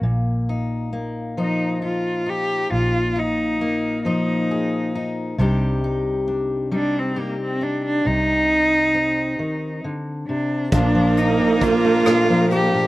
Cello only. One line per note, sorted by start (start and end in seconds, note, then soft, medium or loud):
1.40 1.80 D#4 medium
1.86 2.31 F4 medium
2.29 2.73 G4 medium
2.73 3.21 F4 medium
3.19 4.06 D#4 medium
4.06 5.02 D#4 medium
6.75 7.01 D4 medium
6.99 7.22 C4 medium
7.20 7.41 A#3 medium
7.42 7.64 C4 medium
7.63 7.84 D4 medium
7.85 8.08 D4 medium
8.06 9.84 D#4 medium
10.28 10.70 D4 medium
10.73 11.20 D4 medium
11.18 11.65 D#4 medium
11.63 12.51 F4 medium
12.52 12.87 G4 medium